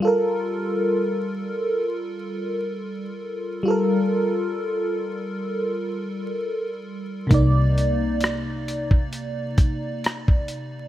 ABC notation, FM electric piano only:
X:1
M:4/4
L:1/8
Q:"Swing 16ths" 1/4=66
K:Gm
V:1 name="FM electric piano"
[G,FAB]8 | [G,FAB]8 | [C,B,Ed]8 |]